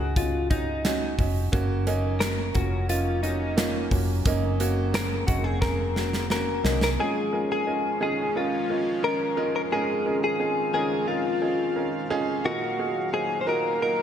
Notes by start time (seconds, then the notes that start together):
Already playing: C#2 A#2 C#4 D#4 F4 F#4 G#4
0.16 C#4 D#4 F4 F#4, kick, closed hi-hat
0.50 C#4 D#4 F#4, kick, closed hi-hat
0.85 C#4 D#4 F#4, snare, clap, closed hi-hat
1.18 F1 C#4 D#4 F#4, kick, open hi-hat
1.52 F#1 C#3 F#3 A#3 C#4 F#4, kick, closed hi-hat
1.87 A#3 C#4 D#4, closed hi-hat
2.20 A#3 C#4 F#4 A#4, snare, clap, closed hi-hat
2.55 F1 A#3 C#4 F4 F#4, kick, closed hi-hat
2.89 A#3 C#4 D#4 F4, closed hi-hat
3.23 A#3 C#4 D#4 F#4, closed hi-hat
3.57 A#3 C#4 F4, snare, clap, closed hi-hat
3.91 F1 A#3 C#4 F#4, kick, open hi-hat
4.25 F#1 C#3 A#3 C4 C#4 D#4, kick, closed hi-hat
4.60 A#3 C#4 F#4, closed hi-hat
4.94 A#3 C#4 G#4 A#4, snare, clap, closed hi-hat
5.27 F1 A#3 C#4 D#4 F#4, kick, closed hi-hat
5.44 G#4
5.62 A#3 C#4 G#4 A#4, kick, snare
5.96 A#3 C#4 F#4, snare
6.13 snare
6.30 A#3 C#4 F#4 A#4, snare
6.64 C2 A#3 C#4 D#4, snare
6.81 A#4, snare
6.98 G#2 D#3 F3 G#3 C#4 D#4 F4 G#4 F5
7.32 C#4 D#4 F4 A#4
7.52 G#4
7.67 C#4 D#4 F4 A#4
8.01 C#4 D#4 F4 G#4
8.35 C#4 D#4 F4 A#4
8.69 C#4 D#4 F4 A#4
9.03 C#4 D#4 F4 A#4
9.37 C#4 D#4 F4 A#4
9.56 A#4
9.71 G#2 C4 C#4 D#4 F4 G#4 A#4
10.06 C#4 D#4 F4 A#4
10.24 G#4
10.39 C#4 D#4 F4 G#4
10.74 C#4 D#4 F4 G#4 A#4
11.08 C#4 D#4 F4 A#4
11.42 C#4 D#4 F4 G#4
11.76 C#4 D#4 F4 A#4
12.10 C#4 D#4 F4 G#4
12.45 A#2 F#3 A#3 D#4 F4 F#4 A#4
12.79 D#4 F4 F#4 G#4
13.12 D#4 F4 F#4 G#4 C5
13.41 C5
13.47 D#4 F4 F#4 A#4
13.81 D#4 F4 F#4 A#4